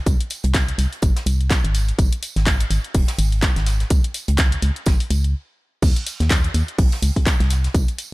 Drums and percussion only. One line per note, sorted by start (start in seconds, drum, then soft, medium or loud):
0.06 kick loud
0.06 closed hi-hat medium
0.06 tambourine medium
0.20 closed hi-hat soft
0.30 open hi-hat loud
0.30 tambourine medium
0.44 closed hi-hat soft
0.54 kick loud
0.54 snare loud
0.54 clap loud
0.54 closed hi-hat medium
0.54 tambourine medium
0.68 closed hi-hat medium
0.79 open hi-hat loud
0.79 tambourine medium
0.93 closed hi-hat soft
1.02 kick loud
1.02 closed hi-hat medium
1.02 tambourine medium
1.16 snare medium
1.16 closed hi-hat medium
1.26 open hi-hat loud
1.26 tambourine medium
1.41 closed hi-hat soft
1.50 kick loud
1.50 snare loud
1.50 clap loud
1.50 closed hi-hat medium
1.50 tambourine medium
1.65 closed hi-hat medium
1.74 open hi-hat loud
1.74 tambourine medium
1.89 closed hi-hat soft
1.99 kick loud
1.99 closed hi-hat medium
1.99 tambourine medium
2.12 closed hi-hat medium
2.23 open hi-hat medium
2.23 tambourine medium
2.36 snare soft
2.36 closed hi-hat soft
2.46 kick loud
2.46 snare loud
2.46 clap loud
2.46 closed hi-hat medium
2.46 tambourine medium
2.60 closed hi-hat soft
2.60 closed hi-hat medium
2.70 open hi-hat loud
2.70 tambourine medium
2.84 closed hi-hat soft
2.95 kick loud
2.95 closed hi-hat medium
2.95 open hi-hat medium
3.08 snare medium
3.08 closed hi-hat medium
3.19 open hi-hat loud
3.19 tambourine medium
3.32 closed hi-hat soft
3.42 kick loud
3.42 snare loud
3.42 clap loud
3.42 closed hi-hat medium
3.42 tambourine medium
3.56 snare soft
3.56 closed hi-hat medium
3.66 snare soft
3.66 open hi-hat medium
3.66 tambourine medium
3.80 snare soft
3.80 closed hi-hat soft
3.90 kick loud
3.90 closed hi-hat medium
3.90 tambourine medium
4.04 closed hi-hat medium
4.14 open hi-hat medium
4.14 tambourine medium
4.28 closed hi-hat soft
4.38 kick loud
4.38 snare loud
4.38 clap loud
4.38 closed hi-hat medium
4.38 tambourine medium
4.52 closed hi-hat medium
4.62 open hi-hat loud
4.76 closed hi-hat soft
4.86 kick loud
4.86 snare loud
4.86 closed hi-hat medium
4.86 tambourine medium
5.00 open hi-hat medium
5.10 open hi-hat loud
5.10 tambourine medium
5.24 closed hi-hat soft
5.82 kick loud
5.82 closed hi-hat medium
5.82 tambourine medium
5.82 crash loud
5.96 closed hi-hat soft
6.07 open hi-hat loud
6.07 tambourine medium
6.20 snare soft
6.20 closed hi-hat soft
6.31 kick loud
6.31 snare loud
6.31 clap loud
6.31 closed hi-hat medium
6.31 tambourine medium
6.44 closed hi-hat soft
6.54 open hi-hat loud
6.54 tambourine medium
6.68 closed hi-hat soft
6.78 kick loud
6.78 closed hi-hat medium
6.78 open hi-hat medium
6.92 snare medium
6.92 closed hi-hat soft
7.03 open hi-hat loud
7.03 tambourine medium
7.16 kick medium
7.16 open hi-hat medium
7.26 kick loud
7.26 snare loud
7.26 clap loud
7.26 closed hi-hat medium
7.26 tambourine medium
7.40 snare soft
7.40 closed hi-hat soft
7.50 snare soft
7.50 open hi-hat loud
7.50 tambourine medium
7.64 snare soft
7.64 closed hi-hat soft
7.74 kick loud
7.74 closed hi-hat medium
7.74 tambourine medium
7.88 closed hi-hat soft
7.98 open hi-hat loud
7.98 tambourine medium